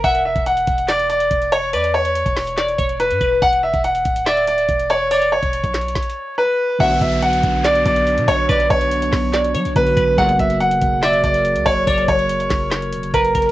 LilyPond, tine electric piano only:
\new Staff \with { instrumentName = "Tine electric piano" } { \time 4/4 \key b \minor \tempo 4 = 142 r1 | r1 | r1 | r1 |
<d fis b fis' b'>1~ | <d fis b fis' b'>2. <d fis b fis' b'>4 | <cis fis ais fis' ais'>1~ | <cis fis ais fis' ais'>1 | }